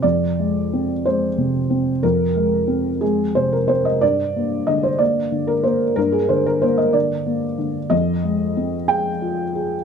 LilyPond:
<<
  \new Staff \with { instrumentName = "Felt piano" } { \time 6/8 \key f \dorian \tempo 4. = 61 d''4. c''4. | bes'4. aes'8 c''16 bes'16 c''16 ees''16 | d''4 ees''16 c''16 d''8. bes'16 c''8 | bes'16 aes'16 c''16 bes'16 c''16 ees''16 d''4 r8 |
ees''4. g''4. | }
  \new Staff \with { instrumentName = "Felt piano" } { \clef bass \time 6/8 \key f \dorian f,8 aes8 c'8 aes8 c8 c'8 | f,8 aes8 c'8 aes8 c8 c'8 | g,8 bes8 d8 bes8 d8 bes8 | g,8 d8 bes8 d8 bes8 d8 |
f,8 aes8 c'8 aes'8 f'8 aes'8 | }
>>